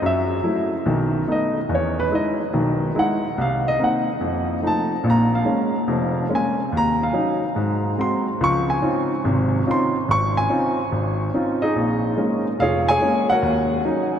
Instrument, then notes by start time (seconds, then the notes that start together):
grand piano
0.02 F#2 F#3 E5
0.44 F#3 A3 E4
0.86 B1 D#3
1.28 A3 B3 D#4
1.32 D#5
1.69 E2
1.75 C#5
2.00 B4
2.11 G#3 D#4 E4
2.15 D#5
2.53 B1 D#3
2.95 G#3 D#4 E4
2.99 F#5
3.38 C2 F5
3.68 D#5
3.79 A#3 C4 D#4
3.84 F#5
4.21 F2
4.62 F3 A3 D#4
4.67 A5
5.04 A#1 A#2
5.10 A#5
5.35 F5
5.45 G#3 A#3 C#4
5.88 F1 F2
6.29 G#3 A#3 C#4
6.35 G#5
6.72 D#2
6.77 A#5
7.03 F5
7.13 F#3 C#4 D#4
7.56 G#2
7.98 G#3 C4 F#4 C6
8.41 C#2 F3 C#6
8.70 G#5
8.82 C4 C#4 D#4 F4
9.25 G#1 C3
9.67 C4 C#4 D#4 F4
9.71 C6
10.08 G#1 C#6
10.37 G#5
10.50 C4 C#4 D#4 F4
10.92 G#1
11.34 C4 C#4 D#4 F4
11.62 D#4 G#4 D#5
11.76 A#1
12.17 G#3 A#3 C#4
12.59 F1 F4 G#4 C#5 F5
12.89 G#4 C#5 G#5
13.01 G#3 A#3 C#4
13.30 F#4 A#4 C#5 F#5
13.42 D#2
13.85 F#3 C#4 D#4